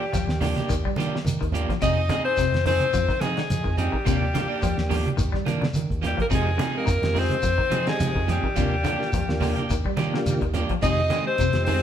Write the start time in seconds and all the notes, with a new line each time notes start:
Already playing: G3 G4
0.12 D#2 F3, kick, snare, closed hi-hat, high conga, shekere
0.27 D#2, snare
0.41 D3 F3 A#3 D4 G4, open hi-hat, high conga, low conga, shekere
0.56 A#3 D4 G4, snare, closed hi-hat, high conga
0.69 D#2 D#3, kick, closed hi-hat, high conga, shekere
0.85 G3, kick
0.96 D#3 F3 A#3 D4 G4, closed hi-hat, high conga, shekere
1.01 snare
1.16 snare
1.24 D#3, closed hi-hat, high conga, shekere
1.41 D#2 D#3, kick, closed hi-hat
1.52 F3 A#3 D4 G4, closed hi-hat, low conga, shekere
1.69 F3, kick, snare, closed hi-hat
1.81 F2 C3 C4 D#4 G#4 D#5, kick, closed hi-hat, high conga, shekere
2.09 D3 C4 D#4 G#4, snare, closed hi-hat, high conga, low conga, shekere
2.24 C4 D#4 G#4 C5
2.37 F2 C3, kick, closed hi-hat, high conga, shekere
2.52 F2, snare, closed hi-hat
2.66 D#3 C4 D#4 G#4 C5, open hi-hat, high conga, low conga, shekere
2.80 closed hi-hat, high conga
2.93 F2 F3, kick, snare, closed hi-hat, high conga, shekere
3.09 D#3, kick, snare
3.21 F3 G#3 C4 D#4 G#4, snare, closed hi-hat, high conga, shekere
3.37 D3, snare, closed hi-hat
3.50 F3, closed hi-hat, high conga, shekere
3.64 F2 D#3, kick
3.77 G3 C4 D#4 G4 G#4, closed hi-hat, low conga, shekere
3.92 D#3, kick
4.05 D#2 C3 F3 A#3 D4 G4, kick, closed hi-hat, shekere
4.34 D3 F3 A#3 D4 G4, snare, closed hi-hat, high conga, low conga, shekere
4.48 A#3 D4 G4
4.62 D#2 F3, kick, closed hi-hat, high conga, shekere
4.78 D#2, snare
4.89 D3 F3 A#3 D4 G4, open hi-hat, low conga, shekere
5.06 closed hi-hat, high conga
5.17 D#2 D#3, kick, closed hi-hat, high conga, shekere
5.32 G3, kick, snare
5.45 D#3 F3 A#3 D4, muted clean electric guitar stroke, snare, closed hi-hat, high conga, shekere
5.61 D3, snare, high conga
5.73 D#3, closed hi-hat, high conga, shekere
5.90 D#2, kick, closed hi-hat
6.02 F3 A#3 G4, muted clean electric guitar stroke, closed hi-hat, low conga, shekere
6.06 G3 G4
6.17 F3 A#3, kick, closed hi-hat
6.22 A#4
6.30 F2 C3 F3 G#3 C4 D#4 G4 G#4, kick, closed hi-hat, high conga, shekere
6.35 G#3 G#4
6.57 D3 F3 C4 D#4 G#4, closed hi-hat, high conga, shekere
6.62 snare
6.72 G#3 C4 D#4 G4 G#4
6.78 A#3 A#4
6.86 F2 D#3, kick, closed hi-hat, high conga, shekere
7.02 F2 G#3 C4 D#4 G4, snare, closed hi-hat
7.14 D#3 F3 C4 G#4, muted clean electric guitar stroke, open hi-hat, low conga, shekere
7.19 C4 C5
7.30 closed hi-hat, high conga
7.42 F2 F3, kick, closed hi-hat, high conga, shekere
7.58 D#3, kick
7.70 F3 C4 D#4 G#4, closed hi-hat, high conga, shekere
7.87 D3 G#3 C4 D#4 G4 G#4, snare, closed hi-hat
7.99 F3, closed hi-hat, high conga, low conga, shekere
8.15 F2 D#3, kick
8.27 F3 C4 G#4, muted clean electric guitar stroke, closed hi-hat, low conga, shekere
8.31 G3 G4
8.43 D#3, kick
8.55 D#2 C3 F3 A#3 D4 F4 G4, kick, closed hi-hat, high conga, shekere
8.83 D3 F3 A#3 D4 G4, closed hi-hat, high conga, low conga, shekere
8.99 A#3 D4 F4 G4, snare
9.13 D#2 F3, kick, closed hi-hat, high conga, shekere
9.28 D#2 A#3 D4 F4 G4, snare
9.40 D3 F3 A#3 D4 G4, open hi-hat, high conga, low conga, shekere
9.56 A#3 D4 G4, closed hi-hat, high conga
9.69 D#2 D#3, kick, closed hi-hat, high conga, shekere
9.85 G3, kick
9.97 D#3 F3 A#3 D4 G4, snare, closed hi-hat, high conga, shekere
10.13 D3 A#3 D4 F4 G4, snare
10.26 D#3, closed hi-hat, high conga, shekere
10.40 D#2 D#3, kick, closed hi-hat
10.54 F3 A#3 D4 G4, closed hi-hat, low conga, shekere
10.69 F3, kick, closed hi-hat
10.81 F2 C3 D#3 G#3 C4 D#4 G4 G#4 D#5, kick, snare, closed hi-hat, high conga, shekere
11.10 D3 D#3 G#3 C4 G#4, snare, closed hi-hat, high conga, shekere
11.23 G#3 C4 D#4 G4 C5
11.38 F2 C3, kick, closed hi-hat, shekere
11.53 F2 G#3 C4 D#4 G4, snare, closed hi-hat
11.65 D#3 G#3 C4 G#4 C5, open hi-hat, low conga, shekere